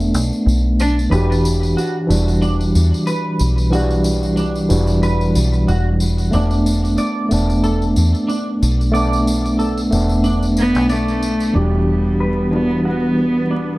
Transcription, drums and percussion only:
0.00 tambourine soft
0.14 tambourine medium
0.33 tambourine soft
0.48 tambourine medium
0.80 tambourine medium
0.99 tambourine soft
1.12 tambourine soft
1.32 tambourine soft
1.45 tambourine medium
1.63 tambourine soft
1.78 tambourine soft
2.10 tambourine medium
2.28 tambourine soft
2.42 tambourine soft
2.61 tambourine soft
2.75 tambourine medium
2.94 tambourine soft
3.07 tambourine medium
3.39 tambourine medium
3.58 tambourine soft
3.73 tambourine medium
3.91 tambourine soft
4.04 tambourine medium
4.23 tambourine soft
4.37 tambourine soft
4.55 tambourine soft
4.70 tambourine medium
4.87 tambourine soft
5.03 tambourine soft
5.21 tambourine soft
5.35 tambourine medium
5.53 tambourine soft
5.68 tambourine soft
6.00 tambourine medium
6.18 tambourine soft
6.33 tambourine soft
6.51 tambourine soft
6.66 tambourine medium
6.85 tambourine soft
6.98 tambourine soft
7.31 tambourine medium
7.50 tambourine soft
7.64 tambourine soft
7.82 tambourine soft
7.96 tambourine medium
8.15 tambourine soft
8.29 tambourine soft
8.63 tambourine medium
8.81 tambourine soft
8.95 tambourine medium
9.13 tambourine soft
9.27 tambourine medium
9.46 tambourine soft
9.59 tambourine soft
9.78 tambourine soft
9.92 tambourine medium
10.09 tambourine soft
10.24 tambourine soft
10.43 tambourine soft
10.57 tambourine medium
10.75 tambourine soft
10.89 tambourine soft
11.08 tambourine soft
11.22 tambourine medium
11.40 tambourine soft

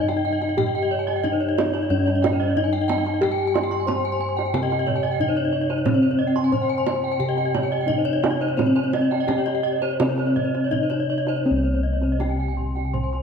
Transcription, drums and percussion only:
0.09 kendang slap soft
0.42 kendang slap soft
0.58 kendang low medium
1.08 kendang slap soft
1.25 kendang low medium
1.58 kendang high medium
1.75 kendang slap soft
2.08 kendang slap soft
2.24 kendang high medium
2.24 kendang low soft
2.57 kendang low medium
2.89 kendang high medium
3.06 kendang slap soft
3.22 kendang low medium
3.56 kendang high soft
3.72 kendang slap soft
3.88 kendang high medium
3.88 kendang low medium
4.39 kendang slap soft
4.54 kendang high medium
4.72 kendang slap soft
4.87 kendang low medium
5.20 kendang low medium
5.70 kendang slap soft
5.86 kendang high soft
5.86 kendang low medium
6.36 kendang slap soft
6.53 kendang low medium
6.87 kendang high medium
7.37 kendang slap soft
7.55 kendang high medium
7.55 kendang low soft
7.89 kendang low medium
8.24 kendang high medium
8.41 kendang slap soft
8.59 kendang high soft
8.59 kendang low medium
8.76 kendang slap soft
8.93 kendang high medium
9.12 kendang slap soft
9.28 kendang high medium
9.28 kendang low medium
9.47 kendang slap soft
9.82 kendang slap soft
10.00 kendang high medium
10.17 kendang slap soft
10.36 kendang low soft
10.54 kendang slap soft
10.72 kendang low medium
10.91 kendang slap soft
11.27 kendang slap soft
12.01 kendang slap soft
12.20 kendang slap soft
12.20 kendang high soft
12.20 kendang low soft
12.57 kendang low soft
12.77 kendang slap soft
12.94 kendang low soft
13.14 kendang slap soft

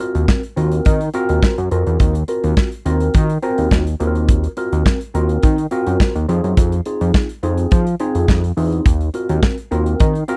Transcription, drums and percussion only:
0.15 closed hi-hat medium
0.28 kick loud
0.28 snare loud
0.43 closed hi-hat medium
0.57 closed hi-hat medium
0.72 closed hi-hat medium
0.85 kick loud
0.85 closed hi-hat medium
1.01 closed hi-hat medium
1.14 closed hi-hat medium
1.29 closed hi-hat medium
1.43 kick loud
1.43 snare loud
1.58 closed hi-hat soft
1.71 closed hi-hat medium
1.87 closed hi-hat soft
2.00 kick loud
2.00 closed hi-hat loud
2.15 closed hi-hat medium
2.28 closed hi-hat medium
2.44 closed hi-hat medium
2.57 kick loud
2.57 snare loud
2.72 closed hi-hat medium
2.86 closed hi-hat medium
3.00 closed hi-hat medium
3.14 kick loud
3.14 closed hi-hat medium
3.30 closed hi-hat medium
3.43 closed hi-hat medium
3.58 closed hi-hat medium
3.71 kick loud
3.71 snare loud
3.87 closed hi-hat medium
4.00 closed hi-hat medium
4.15 closed hi-hat soft
4.28 kick loud
4.28 closed hi-hat loud
4.44 closed hi-hat medium
4.57 closed hi-hat medium
4.73 closed hi-hat medium
4.86 kick loud
4.86 snare loud
5.01 closed hi-hat medium
5.15 closed hi-hat medium
5.29 closed hi-hat medium
5.43 kick loud
5.43 closed hi-hat medium
5.58 closed hi-hat medium
5.71 closed hi-hat medium
5.87 closed hi-hat medium
6.00 kick loud
6.00 snare loud
6.16 closed hi-hat medium
6.29 closed hi-hat medium
6.44 closed hi-hat soft
6.57 kick loud
6.57 closed hi-hat loud
6.72 closed hi-hat soft
6.85 closed hi-hat medium
7.01 closed hi-hat medium
7.14 kick loud
7.14 snare loud
7.29 closed hi-hat medium
7.43 closed hi-hat medium
7.58 closed hi-hat medium
7.71 kick loud
7.71 closed hi-hat medium
7.87 closed hi-hat soft
8.00 closed hi-hat medium
8.15 closed hi-hat medium
8.28 kick loud
8.28 snare loud
8.44 closed hi-hat medium
8.57 open hi-hat medium
8.72 closed hi-hat soft
8.86 kick loud
8.86 closed hi-hat loud
9.01 closed hi-hat soft
9.14 closed hi-hat medium
9.29 closed hi-hat medium
9.43 kick loud
9.43 snare loud
9.58 closed hi-hat soft
9.72 closed hi-hat medium
9.86 closed hi-hat medium
10.00 kick loud
10.00 closed hi-hat medium
10.15 closed hi-hat soft
10.28 closed hi-hat medium

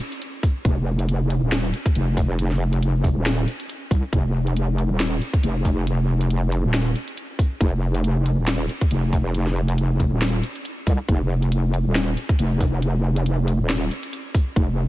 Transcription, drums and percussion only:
0.12 closed hi-hat medium
0.22 closed hi-hat medium
0.43 kick loud
0.43 open hi-hat medium
0.65 kick loud
0.65 closed hi-hat medium
0.99 closed hi-hat medium
1.09 closed hi-hat medium
1.30 closed hi-hat medium
1.52 snare loud
1.52 closed hi-hat medium
1.74 closed hi-hat medium
1.86 kick loud
1.86 closed hi-hat medium
1.95 closed hi-hat medium
2.17 kick medium
2.17 open hi-hat medium
2.39 closed hi-hat medium
2.51 snare soft
2.73 closed hi-hat medium
2.83 closed hi-hat medium
3.04 kick medium
3.04 open hi-hat medium
3.26 snare loud
3.26 closed hi-hat medium
3.48 closed hi-hat medium
3.60 closed hi-hat medium
3.69 closed hi-hat medium
3.91 kick loud
3.91 open hi-hat medium
4.13 kick loud
4.13 closed hi-hat medium
4.47 closed hi-hat medium
4.57 closed hi-hat medium
4.78 closed hi-hat medium
5.00 snare loud
5.00 closed hi-hat medium
5.22 closed hi-hat medium
5.33 kick loud
5.33 closed hi-hat medium
5.43 closed hi-hat medium
5.65 kick medium
5.65 open hi-hat medium
5.87 closed hi-hat medium
6.21 closed hi-hat soft
6.30 closed hi-hat medium
6.52 closed hi-hat soft
6.74 snare loud
6.74 closed hi-hat medium
6.96 closed hi-hat medium
7.08 closed hi-hat soft
7.17 closed hi-hat medium
7.39 kick loud
7.39 open hi-hat medium
7.61 kick loud
7.61 closed hi-hat medium
7.95 closed hi-hat medium
8.04 closed hi-hat medium
8.26 closed hi-hat medium
8.48 snare loud
8.48 closed hi-hat medium
8.69 closed hi-hat medium
8.81 kick loud
8.81 closed hi-hat medium
8.91 closed hi-hat medium
9.13 kick medium
9.13 open hi-hat loud
9.34 closed hi-hat medium
9.47 snare soft
9.68 closed hi-hat medium
9.78 closed hi-hat medium
10.00 kick medium
10.00 closed hi-hat medium
10.22 snare loud
10.22 closed hi-hat medium
10.43 closed hi-hat medium
10.56 closed hi-hat medium
10.65 closed hi-hat medium
10.87 kick loud
10.87 open hi-hat loud
11.09 kick loud
11.09 closed hi-hat medium
11.42 closed hi-hat medium
11.52 closed hi-hat medium
11.74 closed hi-hat medium
11.95 snare loud
11.95 closed hi-hat medium
12.17 closed hi-hat medium
12.29 kick loud
12.29 closed hi-hat medium
12.39 closed hi-hat medium
12.61 kick medium
12.61 open hi-hat loud
12.82 closed hi-hat medium
13.16 closed hi-hat medium
13.26 closed hi-hat medium
13.48 closed hi-hat medium
13.70 snare loud
13.70 closed hi-hat medium
13.91 closed hi-hat medium
14.03 closed hi-hat medium
14.13 closed hi-hat medium
14.35 kick loud
14.35 open hi-hat loud
14.56 kick loud
14.56 closed hi-hat medium

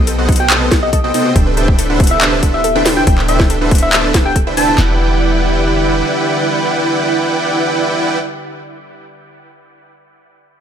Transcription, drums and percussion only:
0.07 closed hi-hat medium
0.29 kick loud
0.29 closed hi-hat soft
0.32 closed hi-hat medium
0.36 closed hi-hat medium
0.50 clap loud
0.50 closed hi-hat medium
0.71 kick loud
0.71 snare medium
0.71 closed hi-hat medium
0.93 kick medium
0.93 closed hi-hat medium
1.14 open hi-hat loud
1.36 kick loud
1.36 closed hi-hat medium
1.57 closed hi-hat medium
1.68 kick loud
1.79 closed hi-hat medium
2.00 kick loud
2.00 closed hi-hat soft
2.04 closed hi-hat medium
2.07 closed hi-hat medium
2.21 clap loud
2.21 closed hi-hat medium
2.43 kick medium
2.43 closed hi-hat medium
2.64 closed hi-hat medium
2.86 snare medium
2.86 open hi-hat loud
3.07 kick loud
3.07 closed hi-hat medium
3.18 clap soft
3.28 closed hi-hat medium
3.40 kick loud
3.40 snare medium
3.50 closed hi-hat medium
3.71 kick loud
3.71 closed hi-hat medium
3.75 closed hi-hat medium
3.78 closed hi-hat medium
3.93 clap loud
3.93 closed hi-hat medium
4.14 kick loud
4.14 snare medium
4.14 closed hi-hat medium
4.36 kick medium
4.36 closed hi-hat medium
4.57 open hi-hat medium
4.78 snare loud
4.78 clap medium

